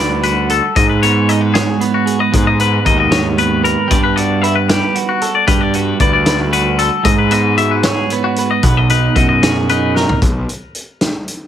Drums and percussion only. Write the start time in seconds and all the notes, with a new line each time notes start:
0.23 closed hi-hat
0.50 closed hi-hat
0.76 kick, closed hi-hat
1.03 closed hi-hat
1.29 closed hi-hat
1.55 snare, closed hi-hat
1.81 closed hi-hat
2.07 closed hi-hat
2.34 kick, closed hi-hat
2.60 closed hi-hat
2.86 kick, closed hi-hat
3.12 snare, closed hi-hat
3.38 closed hi-hat
3.65 closed hi-hat
3.91 kick, closed hi-hat
4.17 closed hi-hat
4.44 closed hi-hat
4.69 snare, closed hi-hat
4.96 closed hi-hat
5.22 closed hi-hat
5.48 kick, closed hi-hat
5.74 closed hi-hat
6.00 kick, closed hi-hat
6.26 snare, closed hi-hat
6.53 closed hi-hat
6.79 closed hi-hat
7.05 kick, closed hi-hat
7.31 closed hi-hat
7.58 closed hi-hat
7.83 snare, closed hi-hat
8.10 closed hi-hat
8.36 closed hi-hat
8.63 kick, closed hi-hat
8.90 closed hi-hat
9.16 kick, closed hi-hat
9.43 snare, closed hi-hat
9.69 closed hi-hat
9.96 snare
10.09 floor tom
10.22 kick, closed hi-hat
10.49 closed hi-hat
10.75 closed hi-hat
11.01 snare, closed hi-hat
11.28 closed hi-hat